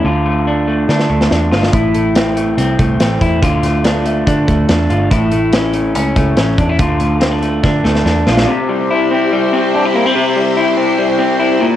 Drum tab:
HH |----------------|x-x-x-x-x-x-x-x-|x-x-x-x-x-x-x-x-|x-x-x-x-x-x-x-x-|
SD |--------oo-oo-oo|----o-------o---|--o-o-------o---|----o-------o---|
BD |----------------|o---------o---o-|o-------o-o-----|o---------o---o-|

HH |x-x-x-x---------|----------------|----------------|
SD |----o---o-ooo-oo|----------------|----------------|
BD |o-------o-------|----------------|----------------|